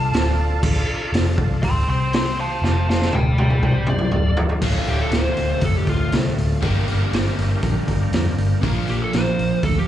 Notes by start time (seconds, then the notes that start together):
Already playing: C2 D4 F4 A4 A5
0.12 D1, snare, open hi-hat
0.63 D1, kick, crash
0.87 muted picked electric bass stroke
1.13 F1, snare, open hi-hat
1.38 C2, kick
1.63 D1 G5 C6, kick, open hi-hat
1.87 C2 C4 G4 C5 G5 C6
2.13 G5 C6, snare, open hi-hat
2.40 F5 A5
2.62 F1 C4 F4 C5 F5 A5, snare
2.89 F5 A5, snare
3.02 snare
3.12 D1 D4 F4 A4 D5 G5, high tom
3.38 D5 G5, high tom
3.50 mid tom
3.61 C2 C4 G4 C5 D5 G5, mid tom
3.87 D5, mid tom
3.99 mid tom
4.11 D1 D4 F4 A4, mid tom
4.37 floor tom
4.49 floor tom
4.60 D1 D2 A2 D3 A3 D4 F4 A4, kick, crash
4.86 D1 G4, open hi-hat
5.01 A4
5.11 D1 C5, snare, open hi-hat
5.37 D1, open hi-hat
5.61 F1 A4, kick, open hi-hat
5.77 G4
5.87 D1 F4, kick, open hi-hat
6.12 C2, snare, open hi-hat
6.27 snare
6.36 D1, open hi-hat
6.61 G1 G2 D3 G3 A#3 D4 G4 A#4, kick, open hi-hat
6.87 G1, open hi-hat
7.13 G1, snare, open hi-hat
7.39 G1, open hi-hat
7.63 A#1, kick, open hi-hat
7.88 G1, kick, open hi-hat
8.12 F2, snare, open hi-hat
8.27 snare
8.37 G1, open hi-hat
8.62 A#1 A#2 F3 A#3 D4 F4 A#4, kick, open hi-hat
8.88 A#1 G4, open hi-hat
9.02 A4
9.13 A#1 C5, snare, open hi-hat
9.39 A#1, open hi-hat
9.63 D2 A4, kick, open hi-hat
9.79 G4